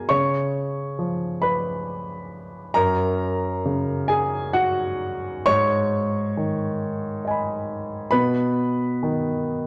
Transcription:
Already playing: F#3 G#4 A#4 G#5 A#5
0.09 C#3 C#5 C#6
0.99 F3
1.42 B4 B5
2.74 F#2 A#4 A#5
3.65 C#3
4.08 G#4 G#5
4.53 F#4 F#5
5.46 G#2 C#5 C#6
6.37 D#3
7.25 D#5 G#5
7.31 B5
8.11 B2 B4 B5
9.03 D#3

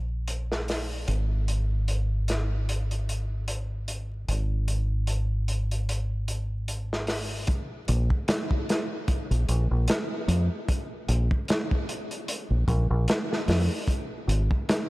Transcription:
Already playing: A#1
0.28 closed hi-hat
0.52 snare
0.68 snare, open hi-hat
1.08 G#1, closed hi-hat
1.48 closed hi-hat
1.88 closed hi-hat
2.28 snare, closed hi-hat
2.69 closed hi-hat
2.91 closed hi-hat
3.09 closed hi-hat
3.48 closed hi-hat
3.88 closed hi-hat
4.28 G#1, closed hi-hat
4.68 closed hi-hat
5.07 closed hi-hat
5.48 closed hi-hat
5.71 closed hi-hat
5.89 closed hi-hat
6.28 closed hi-hat
6.68 closed hi-hat
6.93 snare
7.07 snare, open hi-hat
7.47 kick, closed hi-hat
7.88 A#1, closed hi-hat
8.10 kick
8.28 snare, closed hi-hat
8.51 kick
8.69 snare, closed hi-hat
9.08 kick, closed hi-hat
9.31 A#1, closed hi-hat
9.49 A#1, closed hi-hat
9.71 A#1
9.88 snare, closed hi-hat
10.28 F2, closed hi-hat
10.68 kick, closed hi-hat
11.09 A#1, closed hi-hat
11.31 kick
11.48 snare, closed hi-hat
11.71 kick
11.89 closed hi-hat
12.11 closed hi-hat
12.28 closed hi-hat
12.50 A#1
12.68 A#1, kick, closed hi-hat
12.90 A#1
13.08 snare, closed hi-hat
13.33 snare
13.48 F2, snare, open hi-hat
13.88 kick, closed hi-hat
14.28 G#1, closed hi-hat
14.51 kick
14.69 snare, closed hi-hat

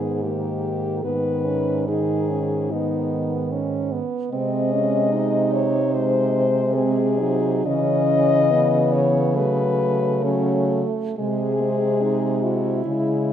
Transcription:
Already playing: G#2 D#3 B3 G#4
0.23 D#3 A#3 G4
1.04 G#2 D#3 B3 B4
1.45 C#4
1.88 D#3 D#4 G#4
2.31 C#4
2.71 D#3 B3 D#4
3.52 C#4
3.92 B3
4.31 C3 G#3 C4 D#5
4.72 C#4
5.12 D#4
5.54 C#5
5.94 G#3 C5
6.74 G#3 C4 G#4
7.19 F#3 D#4
7.66 C#3 E3 C#4 D#5
8.51 B3
8.93 C#5
9.36 F#3 A3 B4
10.24 F#3 C#4
11.17 C3 G#3 G#4
11.61 C4
12.03 D#4
12.43 E4 F#4
12.85 C#3 G#3 E4

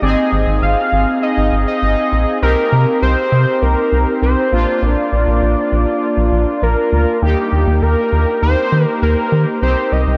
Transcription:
0.02 G#1 C4 D#4 G#4 D#5
0.32 G#1
0.47 G#1
0.62 G#1 F5
0.92 G#1
1.22 D#5
1.37 G#1
1.52 G#1
1.67 D#5
1.82 G#1
2.12 A#1
2.42 C2 C4 D#4 G4 A#4
2.72 C3
3.02 C2 C5
3.32 C3
3.62 C2 A#4
3.92 C2
4.22 C2 C5
4.52 A#1 A#3 D4 F4
4.82 A#1 D5
5.12 A#1
5.27 A#1
5.42 A#1
5.72 A#1
6.17 A#1
6.32 A#1
6.62 A#1 A#4
6.92 D2
7.22 D#2 A#3 D#4 G4
7.52 D#2
7.67 D#2
7.82 D#2 A#4
8.12 D#2
8.42 D#2 C5
8.72 D#3
8.85 A#4
9.02 D#2 A#4
9.32 D#3
9.62 C2 C4 D#4 G4 C5
9.92 C2 D#5
10.07 C2

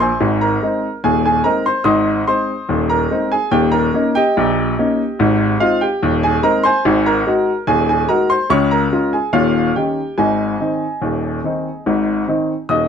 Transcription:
0.00 C5 G#5 C6
0.20 G#1 G#2
0.41 A#4 A#5
0.62 G#3 C4 D#4
1.04 D#1 D#2 G#4 G#5
1.26 G#4 G#5
1.44 G#3 C4 D#4 A#4 A#5
1.66 C5 C6
1.84 G#1 G#2 D#5 C6 D#6
2.27 G#3 C4 D#4 C5 C6
2.69 D#1 D#2
2.90 A#4 A#5
3.11 G#3 C4 D#4
3.32 G#4 G#5
3.51 D#1 D#2 G4 G5
3.72 A#4 A#5
3.94 A#3 C#4 D#4
4.15 G4 D#5 G5
4.37 A#1 A#2
4.79 A#3 C#4 D#4
5.19 G#1 G#2
5.60 G#3 C4 D#4 F4 F5
5.81 G4 G5
6.03 D#1 D#2
6.23 G#4 G#5
6.43 G#3 C4 D#4 A#4 A#5
6.64 C5 G#5 C6
6.85 G#1 G#2
7.06 A#4 A#5
7.26 G#3 D#4 F#4
7.67 D#1 D#2 G#4 G#5
7.89 G#4 G#5
8.09 G#3 D#4 F#4 A#4 A#5
8.30 C5 C6
8.50 C#2 C#3 C#5 C#6
8.71 A#4 A#5
8.92 G#3 C#4 F4
9.13 G#4 G#5
9.33 D#1 D#2 F4 C#5 F5
9.76 D#3 C#4 D#4 G4 G5
10.18 G#1 G#2 G#4 D#5 G#5
10.60 D#3 C4 D#4
11.02 D#1 D#2
11.44 D#3 C4 D#4
11.86 G#1 G#2
12.28 D#3 C4 D#4
12.69 D#1 D#2 D#5 D#6

